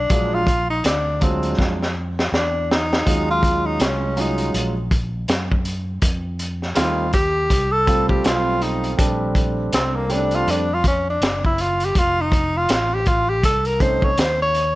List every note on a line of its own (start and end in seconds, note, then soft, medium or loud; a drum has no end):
0.00 0.36 D4 medium
0.10 0.80 A#1 loud
0.10 0.38 F#3 medium
0.10 0.38 G#3 medium
0.10 0.38 D4 medium
0.10 0.39 F4 medium
0.10 kick loud
0.10 closed hi-hat medium
0.34 0.69 F4 loud
0.47 kick medium
0.47 closed hi-hat medium
0.70 0.83 D#4 medium
0.84 1.54 D2 medium
0.84 1.24 D4 medium
0.84 snare medium
0.84 closed hi-hat loud
1.20 1.75 F#3 medium
1.20 1.75 G#3 medium
1.20 1.58 C4 medium
1.20 1.75 D4 medium
1.20 1.76 F4 medium
1.20 kick medium
1.20 closed hi-hat medium
1.43 closed hi-hat soft
1.58 2.28 F2 loud
1.58 kick medium
1.58 snare medium
1.82 snare soft
2.19 snare medium
2.32 3.02 E2 medium
2.32 2.73 D4 medium
2.32 snare medium
2.71 3.29 D#4 loud
2.71 snare medium
2.93 snare medium
3.05 3.77 D#2 medium
3.05 4.11 F#3 medium
3.05 4.11 G#3 medium
3.05 4.11 C#4 medium
3.05 4.11 F4 medium
3.05 kick loud
3.05 closed hi-hat medium
3.30 3.67 F4 loud
3.43 kick medium
3.43 closed hi-hat medium
3.66 3.84 D#4 medium
3.80 4.50 C2 medium
3.80 4.22 C#4 medium
3.80 snare loud
3.80 closed hi-hat loud
4.16 4.71 F#3 medium
4.16 4.71 G#3 medium
4.16 4.71 C#4 medium
4.16 4.72 F4 medium
4.16 closed hi-hat medium
4.20 4.56 D#4 medium
4.38 closed hi-hat soft
4.54 5.24 A#1 medium
4.54 closed hi-hat medium
4.91 kick medium
4.91 closed hi-hat medium
5.28 5.99 F#2 medium
5.28 snare loud
5.28 closed hi-hat loud
5.52 kick medium
5.65 closed hi-hat medium
6.02 6.73 F2 loud
6.02 kick loud
6.02 closed hi-hat medium
6.39 closed hi-hat medium
6.62 snare soft
6.75 7.47 D#2 medium
6.75 7.04 G3 medium
6.75 7.04 A3 medium
6.75 7.04 C4 medium
6.75 7.04 D#4 medium
6.75 7.10 F4 medium
6.75 snare loud
6.75 closed hi-hat loud
7.13 7.73 G4 loud
7.13 kick medium
7.13 closed hi-hat medium
7.50 8.21 C2 medium
7.50 kick medium
7.50 closed hi-hat medium
7.72 8.08 A4 loud
7.87 8.92 G3 medium
7.87 8.92 A3 medium
7.87 8.93 C4 medium
7.87 8.93 F4 medium
7.87 kick loud
7.87 closed hi-hat medium
8.09 8.27 G4 medium
8.09 kick medium
8.24 8.95 B1 loud
8.24 8.64 F4 medium
8.24 snare loud
8.24 closed hi-hat loud
8.62 8.99 D#4 medium
8.62 closed hi-hat medium
8.84 closed hi-hat medium
8.97 9.69 A#1 loud
8.97 10.03 G3 medium
8.97 10.03 A3 medium
8.97 10.04 C4 medium
8.97 10.04 D4 medium
8.97 kick loud
8.97 closed hi-hat loud
9.35 kick medium
9.35 closed hi-hat medium
9.73 10.43 C2 medium
9.73 9.97 C4 medium
9.73 snare loud
9.73 closed hi-hat loud
9.96 10.13 A#3 medium
10.09 10.64 G3 medium
10.09 10.64 A3 medium
10.09 10.64 C4 medium
10.09 10.18 C#4 medium
10.09 10.36 D4 medium
10.09 closed hi-hat medium
10.17 10.68 D4 medium
10.31 10.52 F4 medium
10.31 closed hi-hat soft
10.47 11.17 F2 loud
10.47 10.75 D4 medium
10.47 closed hi-hat medium
10.73 10.86 F4 medium
10.84 11.06 C#4 medium
10.84 kick medium
10.84 closed hi-hat medium
11.10 11.42 D4 medium
11.21 11.91 F#1 medium
11.21 snare loud
11.21 closed hi-hat medium
11.45 11.63 E4 medium
11.45 kick medium
11.58 11.86 F4 medium
11.58 closed hi-hat medium
11.80 closed hi-hat medium
11.85 12.00 G4 loud
11.95 12.66 F1 loud
11.95 12.23 F4 loud
11.95 kick loud
11.95 closed hi-hat medium
12.21 12.58 D#4 medium
12.32 kick medium
12.32 closed hi-hat medium
12.57 12.96 F4 loud
12.69 13.44 A1 medium
12.69 snare loud
12.69 closed hi-hat loud
12.94 13.09 G4 medium
13.06 13.31 F4 medium
13.06 kick medium
13.06 closed hi-hat medium
13.29 13.44 G4 medium
13.43 14.14 C2 loud
13.43 13.68 A4 loud
13.43 kick medium
13.43 closed hi-hat medium
13.65 13.82 A#4 loud
13.65 closed hi-hat soft
13.80 14.08 A3 medium
13.80 14.08 C4 medium
13.80 14.08 C#4 medium
13.80 14.09 D#4 medium
13.80 14.06 C5 loud
13.80 kick loud
13.80 closed hi-hat medium
14.02 14.21 C#5 loud
14.02 kick medium
14.18 14.75 D#2 loud
14.18 14.40 C5 loud
14.18 snare loud
14.18 closed hi-hat loud
14.42 14.75 C#5 loud
14.55 closed hi-hat medium